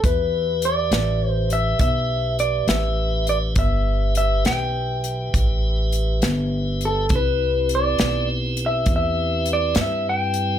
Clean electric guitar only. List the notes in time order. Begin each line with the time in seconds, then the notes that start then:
0.05 B4
0.65 D5
1.30 C5
1.53 E5
1.81 E5
2.40 D5
2.69 E5
3.29 D5
3.59 E5
4.17 E5
4.46 G5
6.85 A4
7.16 B4
7.75 D5
8.66 E5
8.96 E5
9.53 D5
9.81 E5
10.09 G5